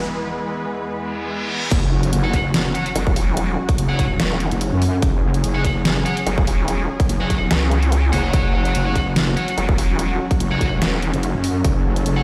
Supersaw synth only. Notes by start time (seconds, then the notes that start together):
Already playing: E2 E3 G#3 B3 B4
1.71 F#3 C#4 F#4
5.02 G#4
8.34 F#4
11.65 A4